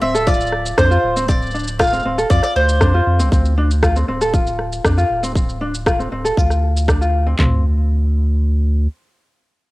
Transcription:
0.02 D1 C4 E5
0.14 A4, shaker
0.27 F4 D5, kick, shaker
0.34 shaker
0.40 shaker
0.47 shaker
0.52 cross-stick
0.66 shaker
0.78 F2 D4 C5, kick, cross-stick, shaker
0.91 F4, shaker
1.04 D1
1.16 C4, shaker
1.28 C4 D5, kick, shaker
1.42 shaker
1.46 shaker
1.51 D4, shaker
1.55 shaker
1.59 shaker
1.64 shaker
1.68 shaker
1.79 F4 F5, kick, cross-stick, shaker
1.84 shaker
1.87 shaker
1.90 C4, shaker
1.93 shaker
1.96 shaker
2.00 shaker
2.03 D1 C4, shaker
2.18 A4, shaker
2.30 F2 F4 D5, kick, shaker
2.43 D5, cross-stick, shaker
2.56 D2 C5
2.69 shaker
2.81 F2 D4, kick, cross-stick, shaker
2.94 F4
3.07 F2
3.19 C2 C4, shaker
3.32 D2 C4, kick, shaker
3.45 shaker
3.58 D4
3.71 shaker
3.83 F4, kick, cross-stick, shaker
3.96 C4, shaker
4.08 D1 C4
4.21 A4, shaker
4.34 F4, kick, shaker
4.47 shaker
4.59 cross-stick
4.73 shaker
4.85 F2 D4, kick, cross-stick, shaker
4.98 F4, shaker
5.10 D1
5.23 C4, shaker
5.35 C4, kick, shaker
5.49 shaker
5.61 D4
5.75 shaker
5.86 F4, kick, cross-stick, shaker
5.99 C4, shaker
6.12 D1 C4
6.25 A4, shaker
6.37 D2 F4, kick, shaker
6.50 cross-stick, shaker
6.77 shaker
6.88 D4, kick, cross-stick, shaker
7.01 F4, shaker
7.26 C4
7.39 D2 C4, kick, clap, floor tom

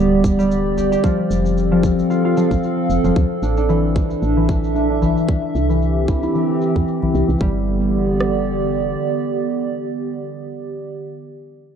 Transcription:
Already playing: D1 D3 G3 B3 G4 C5 D5
0.24 kick, udu, cabasa
0.39 G3, cabasa
0.51 cabasa
0.77 G4, udu, cabasa
0.92 G4, cabasa
1.04 F3, kick, cabasa
1.27 F1 C4, cabasa
1.46 cabasa
1.57 A4, cabasa
1.72 F3
1.83 kick, udu, cabasa
1.99 F5, cabasa
2.10 F4, cabasa
2.25 F4
2.37 F3, cabasa
2.51 A1, kick, cabasa
2.63 cabasa
2.90 F1, cabasa
3.04 F1 F3, cabasa
3.16 D2, kick, cabasa
3.42 A1 D4, cabasa
3.57 D4, cabasa
3.69 E3 D4, cabasa
3.95 kick, udu, cabasa
4.09 E5, cabasa
4.22 A1, cabasa
4.37 E3
4.49 kick, udu, cabasa
4.64 cabasa
4.75 D4, cabasa
4.90 D4
5.02 E3, udu, cabasa
5.17 cabasa
5.28 E3, kick, cabasa
5.55 C2 G4, cabasa
5.69 E3, cabasa
5.79 C4, cabasa
6.08 E4, kick, udu, cabasa
6.23 E4, cabasa
6.35 E3, cabasa
6.61 cabasa
6.76 E2, kick, cabasa
6.88 cabasa
7.02 E3, udu
7.14 C2, cabasa
7.29 C2, cabasa
7.41 G1 D3 G3, kick
7.50 B3
7.58 G4
7.65 D5
8.21 cross-stick

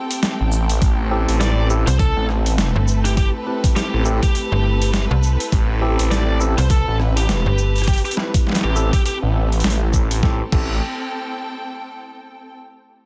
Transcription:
Already playing: A3 C4 G4 A4 G5
0.11 closed hi-hat
0.23 snare, closed hi-hat
0.40 A1
0.52 shaker
0.69 closed hi-hat
0.82 A1 E4, kick, closed hi-hat
1.11 C4 E4 G4 A4
1.28 A1, closed hi-hat
1.33 B4
1.40 D5, snare, closed hi-hat
1.70 C4 E4 G4 A4, shaker
1.87 C2 C5, closed hi-hat
1.99 A4, kick, closed hi-hat
2.17 A1
2.29 cross-stick
2.46 closed hi-hat
2.58 snare, closed hi-hat
2.76 G1
2.88 shaker
3.05 G4, cross-stick, closed hi-hat
3.17 G4, kick, closed hi-hat
3.47 C4 E4 G4 B4
3.64 kick, closed hi-hat
3.76 G4, snare, closed hi-hat
3.93 A1
4.05 C4 E4 G4 A4, shaker
4.23 G4, kick, closed hi-hat
4.35 closed hi-hat
4.52 G1
4.82 closed hi-hat
4.94 snare, closed hi-hat
5.11 C2
5.23 shaker
5.40 closed hi-hat
5.52 A1, kick, closed hi-hat
5.82 C4 E4 G4 A4
5.99 A1, closed hi-hat
6.11 D5, snare, closed hi-hat
6.40 C4 E4 G4 A4, shaker
6.58 C2 C5, closed hi-hat
6.70 A4, kick, closed hi-hat
6.87 A1
7.00 cross-stick
7.17 G4, closed hi-hat
7.29 snare, closed hi-hat
7.46 G1
7.58 shaker
7.76 closed hi-hat
7.78 cross-stick, closed hi-hat
7.84 closed hi-hat
7.88 G4, kick, closed hi-hat
7.93 closed hi-hat
7.96 closed hi-hat
8.05 G4, closed hi-hat
8.11 closed hi-hat
8.17 C4 E4 G4 B4, cross-stick, snare
8.34 kick, closed hi-hat
8.47 snare
8.49 snare
8.52 snare
8.55 snare, closed hi-hat
8.61 A1 G4, snare
8.76 C4 E4 G4 A4, shaker
8.93 G4, kick, closed hi-hat
9.06 G4, closed hi-hat
9.22 A1
9.52 closed hi-hat
9.60 closed hi-hat
9.64 A1, snare, closed hi-hat
9.70 closed hi-hat
9.93 kick, shaker
10.11 closed hi-hat
10.23 A1 C4 E4 G4 A4, kick, snare
10.33 A4
10.43 G5
10.52 A1 C4 E4 G4 A4, kick, crash

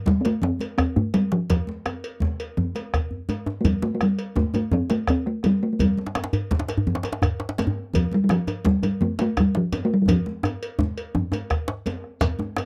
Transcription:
0.06 G3, bombo low, djembe slap, high conga
0.21 C4, cowbell
0.25 A3, djembe slap
0.42 C4, djembe slap, djembe tone, low conga, djembe bass
0.59 cowbell, djembe slap, high conga
0.78 C4, bombo rim, bombo low, cowbell
0.96 A3, bombo rim, djembe bass
1.14 G3, bombo rim, cowbell, djembe slap, high conga, djembe tone
1.32 F3, djembe slap
1.50 F3, bombo rim, bombo low, cowbell, djembe slap, low conga, djembe bass
1.67 djembe slap, high conga
1.86 bombo rim, cowbell, djembe tone
2.04 cowbell
2.20 bombo low, djembe slap, high conga
2.40 cowbell
2.57 djembe tone, low conga, djembe bass
2.75 bombo rim, cowbell, djembe slap, high conga
2.93 bombo rim, bombo low, cowbell, djembe bass
3.11 djembe bass
3.29 cowbell, djembe slap, djembe tone, high conga
3.46 djembe slap, djembe tone
3.61 G3 A3, bombo low, djembe tone, djembe bass
3.65 cowbell, high conga, low conga
3.82 A3, djembe slap, high conga
3.95 A3
4.01 G3, bombo rim, cowbell, djembe tone
4.19 cowbell
4.36 A3, bombo low, djembe slap, high conga, djembe tone
4.54 A3, cowbell, djembe tone, high conga
4.72 C4, djembe tone, djembe bass, low conga
4.90 A3, cowbell, djembe slap, high conga
5.08 C4, bombo rim, bombo low, cowbell
5.26 A3, bombo rim
5.43 G3, bombo rim, cowbell, djembe slap, djembe tone
5.63 A3
5.73 A3
5.79 G3, bombo low, cowbell, high conga, low conga, djembe bass
5.98 djembe slap, high conga
6.06 djembe slap
6.15 bombo rim, cowbell, djembe slap, djembe tone
6.24 djembe slap
6.33 cowbell, djembe bass
6.51 bombo low, djembe slap, high conga
6.59 djembe slap
6.68 cowbell, djembe slap, high conga
6.78 djembe bass
6.87 djembe tone, djembe bass, low conga
6.95 djembe slap
7.03 cowbell, djembe slap
7.05 djembe slap
7.13 djembe slap
7.22 bombo rim, bombo low, cowbell, djembe bass
7.40 bombo rim, djembe slap
7.49 djembe slap
7.58 bombo rim, cowbell, djembe slap, high conga, djembe tone
7.67 djembe bass
7.93 F3, bombo low, cowbell, high conga, low conga, djembe bass
8.11 G3, djembe slap, high conga
8.24 G3
8.29 F3, bombo rim, cowbell, djembe slap, djembe tone
8.47 cowbell, djembe tone
8.65 G3, bombo low, djembe slap, high conga
8.83 G3, cowbell, djembe tone, high conga
9.01 A3, djembe tone, low conga, djembe bass
9.19 A3, cowbell, djembe slap, high conga
9.37 G3, bombo rim, bombo low, cowbell, djembe tone
9.55 F3, bombo rim, djembe slap
9.72 bombo rim, cowbell, djembe slap, djembe tone
9.85 A3
9.94 G3
10.02 G3
10.08 F3, bombo rim, bombo low, cowbell, djembe tone, low conga, djembe bass
10.26 djembe slap, high conga
10.43 bombo rim, cowbell, djembe tone
10.63 cowbell
10.79 bombo low, djembe slap, djembe tone, high conga
10.98 cowbell
11.15 bombo rim, djembe slap, djembe tone, high conga, djembe bass, low conga
11.32 cowbell, djembe slap, djembe tone, high conga
11.50 bombo rim, bombo low, cowbell, djembe slap
11.68 djembe slap, high conga
11.86 bombo rim, cowbell, djembe slap, high conga, djembe tone
12.04 bombo rim
12.21 bombo low, cowbell, djembe slap, high conga, low conga, djembe bass, shekere
12.39 djembe slap, high conga, djembe tone
12.56 bombo rim, cowbell, djembe slap, djembe tone

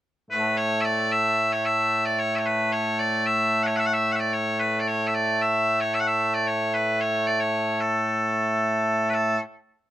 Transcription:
0.31 A2 A3 B4
0.57 C#5
0.81 E5
0.85 D5
1.12 E5
1.52 C#5
1.65 E5
2.05 D5
2.19 C#5
2.35 C#5 E5
2.46 B4
2.72 C#5
2.99 D5
3.26 E5
3.63 C#5 F#5
3.76 E5 F#5
3.86 F#5
3.93 E5
4.12 E5 F#5
4.20 D5
4.33 C#5
4.60 B4
4.80 D5
4.87 C#5
5.07 E5
5.15 D5
5.42 E5
5.81 C#5
5.94 E5
6.00 F#5
6.07 E5
6.34 D5
6.47 C#5
6.74 B4
7.01 C#5
7.27 D5
7.40 C#5
7.81 A4
9.09 B4
9.14 A4

